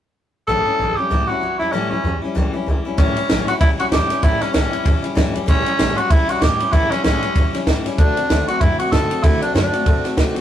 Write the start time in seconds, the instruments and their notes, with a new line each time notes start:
0.47 upright bass A1, steel-string acoustic guitar A2 E3 G3 C#4 E4, tenor saxophone A4
0.66 steel-string acoustic guitar G3 C#4 E4, muted upright bass stroke
0.79 upright bass A1, steel-string acoustic guitar E3 G3 C#4 E4
0.96 steel-string acoustic guitar C#4 E4, tenor saxophone G4, muted upright bass stroke
1.01 steel-string acoustic guitar G3
1.10 upright bass C#2, steel-string acoustic guitar A2 E3 G3 C#4 E4
1.27 steel-string acoustic guitar C#4 E4, tenor saxophone F#4, muted upright bass stroke
1.31 steel-string acoustic guitar G3
1.41 upright bass C#2, steel-string acoustic guitar E3 G3 C#4 E4
1.59 upright bass E2, steel-string acoustic guitar G3 C#4 E4, tenor saxophone E4
1.72 upright bass A1, steel-string acoustic guitar A2 E3 G3 C#4 E4, tenor saxophone C#4
1.91 upright bass E2, steel-string acoustic guitar G3 C#4 E4, tenor saxophone C#4
2.04 upright bass E2, steel-string acoustic guitar E3 G3 C#4 E4
2.22 steel-string acoustic guitar G3 C#4 E4, muted upright bass stroke
2.35 upright bass C#2, steel-string acoustic guitar A2 E3 G3 C#4 E4
2.54 steel-string acoustic guitar G3 C#4 E4
2.66 upright bass C#2, steel-string acoustic guitar E3 G3 C#4 E4
2.85 steel-string acoustic guitar G3 C#4 E4
2.98 upright bass A1, steel-string acoustic guitar A2 E3 G3 C#4 E4, tenor saxophone C#4, kick, ride
3.16 steel-string acoustic guitar G3 C#4 E4, muted upright bass stroke, ride
3.29 upright bass A1, steel-string acoustic guitar A2 E3 G3 C#4 E4, snare, ride
3.47 steel-string acoustic guitar G3 C#4 E4, tenor saxophone F#4, ride
3.59 upright bass C#2, steel-string acoustic guitar E3 G3 C#4 E4, tenor saxophone E4, kick, ride
3.77 steel-string acoustic guitar G3 C#4 E4, tenor saxophone F#4, ride
3.92 upright bass E2, steel-string acoustic guitar A2 E3 G3 C#4 E4, tenor saxophone G4, kick, snare, ride
4.09 steel-string acoustic guitar G3 C#4 E4, muted upright bass stroke, snare, ride
4.22 upright bass A1, steel-string acoustic guitar A2 E3 G3 C#4 E4, tenor saxophone E4, kick, ride
4.41 steel-string acoustic guitar G3 C#4 E4, tenor saxophone C#4, muted upright bass stroke, snare, ride
4.53 upright bass C#2, steel-string acoustic guitar A2 E3 G3 C#4 E4, tenor saxophone C#4, snare, ride
4.71 steel-string acoustic guitar G3 C#4 E4, ride
4.84 upright bass E2, steel-string acoustic guitar E3 G3 C#4 E4, kick, ride
5.02 steel-string acoustic guitar G3 C#4 E4, ride
5.15 upright bass G2, steel-string acoustic guitar A2 E3 G3 C#4 E4, kick, snare, ride
5.33 upright bass E2, steel-string acoustic guitar G3 C#4 E4, ride
5.46 upright bass A1, steel-string acoustic guitar A2 E3 G3 C#4 E4, tenor saxophone C#4, kick, ride
5.65 steel-string acoustic guitar G3 C#4 E4, muted upright bass stroke, ride
5.78 upright bass A1, steel-string acoustic guitar A2 E3 G3 C#4 E4, snare, ride
5.96 steel-string acoustic guitar G3 C#4 E4, tenor saxophone F#4, muted upright bass stroke, ride
6.09 upright bass C#2, steel-string acoustic guitar E3 G3 C#4 E4, tenor saxophone E4, kick, ride
6.28 steel-string acoustic guitar G3 C#4 E4, tenor saxophone F#4, ride
6.41 upright bass E2, steel-string acoustic guitar A2 E3 G3 C#4 E4, tenor saxophone G4, kick, snare, ride
6.59 steel-string acoustic guitar G3 C#4 E4, ride
6.72 upright bass A1, steel-string acoustic guitar A2 E3 G3 C#4 E4, tenor saxophone E4, kick, ride
6.91 steel-string acoustic guitar G3 C#4 E4, tenor saxophone C#4, muted upright bass stroke, snare, ride
7.04 upright bass C#2, steel-string acoustic guitar A2 E3 G3 C#4 E4, tenor saxophone C#4, snare, ride
7.22 steel-string acoustic guitar G3 C#4 E4, ride
7.35 upright bass E2, steel-string acoustic guitar E3 G3 C#4 E4, kick, ride
7.53 steel-string acoustic guitar G3 C#4 E4, snare, ride
7.66 upright bass G2, steel-string acoustic guitar A2 E3 G3 C#4 E4, kick, snare, ride
7.84 upright bass E2, steel-string acoustic guitar G3 C#4 E4, snare, ride
7.98 upright bass D2, steel-string acoustic guitar D3 A3 C4 F#4, tenor saxophone D4, kick, ride
8.16 steel-string acoustic guitar A3 C4 F#4, ride
8.29 upright bass D2, steel-string acoustic guitar D3 A3 C4 F#4, snare, ride
8.47 steel-string acoustic guitar A3 C4 F#4, tenor saxophone F#4, ride
8.60 upright bass F#2, steel-string acoustic guitar D3 A3 C4 F#4, tenor saxophone E4, kick, ride
8.79 steel-string acoustic guitar A3 C4 F#4, tenor saxophone F#4, muted upright bass stroke, ride
8.91 upright bass A2, steel-string acoustic guitar D3 A3 C4 F#4, tenor saxophone A4, kick, snare, ride
9.10 steel-string acoustic guitar A3 C4 F#4, muted upright bass stroke, ride
9.23 upright bass D2, steel-string acoustic guitar D3 A3 C4 F#4, tenor saxophone E4, kick, ride
9.41 steel-string acoustic guitar A3 C4 F#4, tenor saxophone D4, ride
9.54 upright bass F#2, steel-string acoustic guitar D3 A3 C4 F#4, tenor saxophone D4, snare, ride
9.73 steel-string acoustic guitar A3 C4 F#4, ride
9.86 upright bass A2, steel-string acoustic guitar D3 A3 C4 F#4, kick, ride
10.04 steel-string acoustic guitar A3 C4 F#4, muted upright bass stroke, snare, ride
10.17 upright bass C3, steel-string acoustic guitar D3 A3 C4 F#4, kick, snare, ride
10.35 upright bass A2, steel-string acoustic guitar C4 F#4, ride